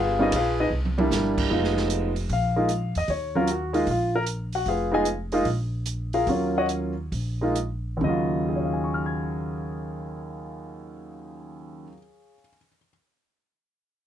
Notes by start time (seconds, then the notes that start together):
Already playing: G1 F4 G#4 B4 F5
0.19 G3 A#3 C#4 D#4 F4 G#4 B4 D#5
0.32 A#1 B4, kick, hi-hat pedal, ride
0.36 F4 G#4 F5
0.60 D#4 G#4 B4 D#5
0.70 C2
0.85 high tom
0.98 G3 A#3 D4 E4, high tom
1.11 G1, snare, hi-hat pedal
1.38 kick, crash
1.50 F1 G#3 B3 D#4 F4, kick
1.64 snare
1.77 snare
1.90 closed hi-hat
2.16 open hi-hat
2.29 A#1 F5, kick, open hi-hat
2.56 G#3 A#3 D#4 F4
2.69 closed hi-hat
2.95 E2 D#5, open hi-hat
3.08 D#2 C#5, kick, open hi-hat
3.35 F#3 A#3 C#4 F4 A#4
3.47 F#4, closed hi-hat
3.73 G#3 A#3 D#4 F4, open hi-hat
3.87 A#1, kick, open hi-hat
3.91 F4
4.16 A#4
4.26 closed hi-hat
4.53 F#4 F#5, open hi-hat
4.66 F1 F4 G#4 B4 F5, kick, open hi-hat
4.92 G#3 B3 D#4 F4 G#4 D#5 F5 G#5
5.05 closed hi-hat
5.32 G#3 A#3 D#4 F4, open hi-hat
5.45 A#1, kick, open hi-hat
5.86 closed hi-hat
6.13 F4 G#4 A#4 F5, open hi-hat
6.27 D#2 F#3 A#3 C#4 F4 F#4 A#4 C#5, kick, open hi-hat
6.58 F#4 C#5 D#5 F#5
6.69 closed hi-hat
7.12 A#1, kick, open hi-hat
7.41 G#3 A#3 D#4 F4
7.56 closed hi-hat
7.97 D#2
8.01 D#2 C#3 D#5
8.05 F#3 F4
8.49 G#4
8.56 C#5
8.65 F5
8.73 G#5
8.84 C#6
8.94 F6
9.06 G#6